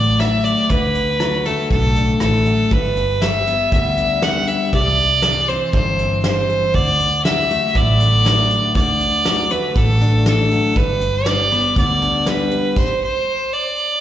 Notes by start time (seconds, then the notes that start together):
Already playing: A1 A2 D3 F#3 A3 D4 D5
0.19 F#3 E5, cross-stick, closed hi-hat
0.44 D5, closed hi-hat
0.69 D2 D3 B4, kick, closed hi-hat
0.95 closed hi-hat
1.20 F#3, cross-stick, closed hi-hat
1.45 A3 A4, closed hi-hat
1.70 B1 A2 A4, kick, closed hi-hat
1.96 D4, closed hi-hat
2.20 A1 E3 A4, cross-stick, closed hi-hat
2.46 F#3, closed hi-hat
2.71 G1 G2 B4, kick, closed hi-hat
2.97 closed hi-hat
3.22 G3 E5, snare, closed hi-hat
3.47 B3, closed hi-hat
3.72 D2 D3 E5, kick, closed hi-hat
3.97 D4, closed hi-hat
4.22 G3 F#5, snare, closed hi-hat
4.47 E5, closed hi-hat
4.73 C2 C3 D5, kick, closed hi-hat
4.98 closed hi-hat
5.22 E3, snare, closed hi-hat
5.48 C4 C5, closed hi-hat
5.73 G1 G2 C5, kick, closed hi-hat
5.99 E4, closed hi-hat
6.23 E3 C5, snare, closed hi-hat
6.49 closed hi-hat
6.74 D2 D3 D5, kick, closed hi-hat
7.00 closed hi-hat
7.25 F#3 E5, snare, closed hi-hat
7.51 A3, closed hi-hat
7.75 A1 A2 D5, kick, closed hi-hat
8.00 D4, closed hi-hat
8.25 F#3, snare, closed hi-hat
8.50 closed hi-hat
8.75 D2 D3 D5, kick, closed hi-hat
9.01 closed hi-hat
9.25 F#3, snare, closed hi-hat
9.50 A3 B4, closed hi-hat
9.76 A1 A2 A4, kick, closed hi-hat
10.01 D4, closed hi-hat
10.26 E3 A4, snare, closed hi-hat
10.51 F#3, closed hi-hat
10.76 G1 G2 B4, kick, closed hi-hat
11.01 closed hi-hat
11.26 G3 D5, snare, closed hi-hat
11.51 B3, closed hi-hat
11.76 D2 D3 D5, kick, closed hi-hat
12.02 D4, closed hi-hat
12.26 G3 B4, snare, closed hi-hat
12.51 closed hi-hat
12.76 C5, kick, crash
13.04 C5
13.53 D5